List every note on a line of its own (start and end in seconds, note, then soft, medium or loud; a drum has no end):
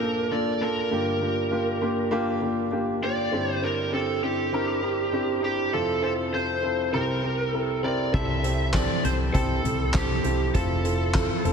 0.00 0.88 A#1 soft
0.00 0.88 A#2 soft
0.00 0.31 A#3 medium
0.00 0.31 D4 medium
0.00 0.31 F4 medium
0.00 0.02 A4 medium
0.00 0.28 A4 medium
0.00 0.34 A#4 medium
0.31 0.57 A#3 medium
0.31 0.58 D4 medium
0.31 0.58 F4 medium
0.31 0.58 A4 medium
0.31 0.63 D5 medium
0.61 0.88 A#3 medium
0.61 0.88 D4 medium
0.61 0.88 F4 medium
0.61 0.88 A4 medium
0.61 2.38 A#4 medium
0.91 3.28 G1 medium
0.91 3.28 G2 soft
0.91 1.18 A#3 medium
0.91 1.18 D4 medium
0.91 1.18 F4 medium
0.91 1.18 G4 medium
1.21 1.48 A#3 medium
1.21 1.48 D4 medium
1.21 1.48 F4 medium
1.21 1.48 G4 medium
1.51 1.78 A#3 medium
1.51 1.78 D4 medium
1.51 1.78 F4 medium
1.51 1.79 G4 medium
1.81 2.08 A#3 medium
1.81 2.08 D4 medium
1.81 2.08 F4 medium
1.81 2.09 G4 medium
2.11 2.38 A#3 loud
2.11 2.38 D4 medium
2.11 2.38 F4 medium
2.11 2.39 G4 loud
2.41 2.68 A#3 medium
2.41 2.69 D4 medium
2.41 2.69 F4 medium
2.41 2.69 G4 medium
2.71 2.98 A#3 medium
2.71 2.98 D4 medium
2.71 2.99 F4 medium
2.71 2.99 G4 medium
3.02 3.28 A#3 medium
3.02 3.29 D4 medium
3.02 3.29 F4 medium
3.02 3.29 G4 medium
3.02 3.51 D5 medium
3.32 5.69 G1 soft
3.32 5.69 G2 soft
3.32 3.59 C4 medium
3.32 3.59 D4 medium
3.32 3.59 E4 medium
3.32 3.59 G4 medium
3.51 3.65 C5 medium
3.62 3.89 C4 medium
3.62 3.89 D4 medium
3.62 3.89 E4 medium
3.62 3.89 G4 medium
3.62 3.93 A#4 medium
3.92 4.19 C4 medium
3.92 4.19 D4 medium
3.92 4.19 E4 medium
3.92 4.20 G4 medium
3.92 4.23 A4 medium
4.22 4.49 C4 medium
4.22 4.49 D4 medium
4.22 4.49 E4 medium
4.22 4.50 G4 medium
4.22 5.43 G4 medium
4.52 4.79 C4 medium
4.52 4.79 D4 medium
4.52 4.80 E4 medium
4.52 4.80 A#4 medium
4.82 5.09 C4 medium
4.82 5.09 D4 soft
4.82 5.10 E4 medium
4.82 5.10 A#4 medium
5.12 5.39 C4 medium
5.12 5.39 D4 medium
5.12 5.40 E4 medium
5.12 5.40 G4 medium
5.42 5.69 C4 medium
5.42 5.69 D4 medium
5.42 5.70 E4 medium
5.42 5.70 G4 medium
5.42 5.72 G4 medium
5.72 6.90 F1 soft
5.72 6.90 F2 medium
5.72 5.99 C4 medium
5.72 5.99 E4 medium
5.72 6.00 F4 medium
5.72 6.03 A4 medium
5.72 6.00 A4 medium
6.02 6.29 C4 medium
6.02 6.29 E4 medium
6.02 6.30 F4 medium
6.02 6.12 A4 medium
6.02 6.30 C5 medium
6.32 6.59 C4 medium
6.32 6.60 E4 soft
6.32 6.60 F4 soft
6.32 6.60 A4 medium
6.32 6.93 C5 medium
6.63 6.90 C4 medium
6.63 6.90 E4 medium
6.63 6.90 F4 medium
6.63 6.90 A4 medium
6.92 8.10 C2 medium
6.92 8.10 C3 soft
6.92 7.19 C4 medium
6.92 7.20 E4 medium
6.92 7.20 G4 medium
6.92 7.53 A#4 medium
6.92 7.20 A#4 medium
7.22 7.49 C4 medium
7.22 7.50 E4 medium
7.22 7.50 G4 soft
7.22 7.50 A#4 medium
7.53 7.80 C4 medium
7.53 7.80 E4 soft
7.53 7.80 G4 soft
7.53 7.80 A4 medium
7.53 7.81 A#4 medium
7.83 8.10 C4 medium
7.83 8.10 E4 medium
7.83 8.10 G4 medium
7.83 8.11 A#4 medium
7.83 8.14 D5 medium
8.12 8.85 C2 medium
8.12 9.00 C3 soft
8.12 8.40 C4 medium
8.12 8.40 E4 medium
8.12 8.40 G4 medium
8.12 8.41 A4 medium
8.12 8.70 E5 medium
8.12 kick medium
8.12 crash medium
8.43 8.70 C4 medium
8.43 8.70 E4 medium
8.43 8.70 G4 medium
8.43 8.71 A4 medium
8.43 closed hi-hat medium
8.73 9.00 C4 medium
8.73 9.00 E4 medium
8.73 9.00 G4 medium
8.73 9.01 A4 medium
8.73 9.03 D5 medium
8.73 kick medium
8.73 snare loud
8.73 clap medium
8.73 closed hi-hat medium
9.03 9.29 C2 medium
9.03 9.30 C4 medium
9.03 9.30 E4 medium
9.03 9.30 G4 medium
9.03 9.31 A4 medium
9.03 9.13 C5 medium
9.03 closed hi-hat medium
9.33 9.59 C2 medium
9.33 9.60 C4 medium
9.33 9.60 E4 medium
9.33 9.60 G4 medium
9.33 9.96 A4 medium
9.33 9.61 A4 medium
9.33 kick medium
9.33 closed hi-hat medium
9.62 9.89 C2 medium
9.62 9.90 C4 medium
9.62 9.90 E4 medium
9.62 9.90 G4 medium
9.62 9.91 A4 medium
9.62 closed hi-hat medium
9.62 floor tom soft
9.93 10.19 C2 medium
9.93 10.20 C4 medium
9.93 10.21 E4 medium
9.93 10.21 G4 medium
9.93 10.51 G4 medium
9.93 10.21 A4 medium
9.93 kick loud
9.93 snare medium
9.93 clap medium
9.93 closed hi-hat medium
10.24 10.49 C2 medium
10.24 10.51 C4 medium
10.24 10.51 E4 medium
10.24 10.51 G4 medium
10.24 10.51 A4 medium
10.24 closed hi-hat medium
10.54 11.26 F1 medium
10.54 10.81 C4 medium
10.54 10.81 E4 medium
10.54 10.81 F4 medium
10.54 11.53 A4 medium
10.54 10.82 A4 medium
10.54 kick medium
10.54 closed hi-hat medium
10.84 11.11 C4 medium
10.84 11.11 E4 medium
10.84 11.11 F4 medium
10.84 11.12 A4 medium
10.84 closed hi-hat medium
11.14 11.41 C4 medium
11.14 11.41 E4 medium
11.14 11.41 F4 medium
11.14 11.42 A4 medium
11.14 kick loud
11.14 snare loud
11.14 clap medium
11.14 closed hi-hat medium
11.44 11.53 F1 medium
11.44 11.53 C4 medium
11.44 11.53 E4 medium
11.44 11.53 F4 medium
11.44 11.53 A4 medium
11.44 closed hi-hat medium